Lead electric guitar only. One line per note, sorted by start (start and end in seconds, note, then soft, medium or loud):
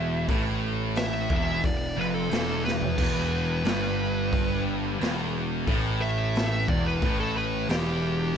0.00 0.26 E5 loud
0.97 1.63 E5 medium
1.65 1.97 D5 medium
2.00 2.14 B4 medium
2.14 2.63 A4 medium
2.65 4.63 B4 loud
6.02 6.67 E5 loud
6.69 6.85 D5 medium
6.86 7.18 B4 medium
7.20 7.36 A4 medium
7.37 7.69 B4 loud
7.70 8.35 G4 loud